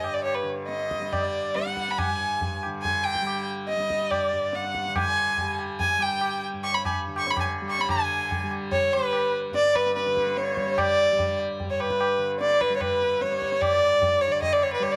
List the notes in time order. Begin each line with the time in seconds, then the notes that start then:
Already playing: G2 D3 G3 D#5
0.03 D#5, tabla na
0.14 D5
0.24 C#5 D5, tabla na
0.34 B4 C#5
0.43 D3
0.67 D#5, tabla te
0.79 D#5, tabla te
0.91 tabla ke
0.99 G3, tabla te
1.12 D5, tabla na, tabla ge
1.21 D5
1.54 G3 F#5, tabla te
1.65 F#5, tabla te
1.77 tabla ke
1.88 B5, tabla te
1.97 G#5, tabla na, tabla ge
2.08 G2 G#5
2.41 tabla tin, tabla ge
2.63 D3, tabla na
2.82 G#5, tabla tin, tabla ge
2.94 G#5
3.03 G5, tabla na
3.15 G5, tabla ke
3.22 G3
3.27 tabla na
3.68 D#5, tabla te
3.77 G3 D#5, tabla te
3.90 tabla ke
4.01 tabla te
4.11 D5, tabla na, tabla ge
4.20 D5
4.33 G2
4.53 F#5, tabla te
4.62 F#5, tabla te
4.75 tabla ke
4.85 D3, tabla te
4.96 G#5, tabla na, tabla ge
5.05 G#5
5.37 tabla tin, tabla ge
5.42 G3
5.59 tabla na
5.80 G#5, tabla tin, tabla ge
5.90 G#5
5.98 G3 G5, tabla na
6.11 G5
6.21 tabla na
6.53 G2
6.63 C#6, tabla na
6.73 C#5 B5, tabla te
6.84 G#5 B5, tabla na, tabla ge
7.07 D3
7.16 C#6, tabla na
7.25 C#5, tabla te
7.30 B5
7.37 G#5, tabla na, tabla ge
7.46 G#5
7.62 G3
7.68 C#6, tabla na
7.78 C#5 B5, tabla te
7.88 D3 G#5, tabla na, tabla ge
7.93 B5
7.99 G#5
8.31 tabla tin, tabla ge
8.43 G3
8.51 tabla na
8.71 C#5, tabla tin, tabla ge
8.82 C#5
8.93 G3 B4, tabla na
9.02 B4
9.13 tabla na
9.51 G2 D5, tabla te
9.63 D5, tabla te
9.75 B4, tabla ke
9.86 tabla te
9.96 B4, tabla te
10.05 D3 B4, tabla te
10.17 tabla ke
10.27 tabla te
10.37 C#5, tabla te
10.46 C#5, tabla te
10.57 G3, tabla ke
10.67 tabla te
10.78 D5, tabla na, tabla ge
10.88 D5
11.12 G3
11.19 tabla tin, tabla ge
11.39 tabla na
11.60 tabla tin, tabla ge
11.65 G2
11.70 C#5
11.79 B4 C#5, tabla na
11.90 B4, tabla ke
12.01 tabla na
12.17 D3
12.40 D5, tabla te
12.51 D5, tabla te
12.61 B4, tabla ke
12.70 G3 B4, tabla te
12.76 C#5
12.80 B4, tabla na, tabla ge
12.92 B4
13.02 tabla te
13.21 G3 C#5, tabla te
13.32 C#5, tabla te
13.42 tabla ke
13.52 tabla te
13.61 D5, tabla na, tabla ge
13.72 D5
13.76 G2
14.02 tabla tin, tabla ge
14.21 C#5
14.28 D3 D5
14.33 C#5
14.42 D#5, tabla tin, tabla ge
14.52 D5 D#5
14.61 C#5 D5, tabla na
14.73 B4
14.80 G3 C#5, tabla na
14.92 C#5 D5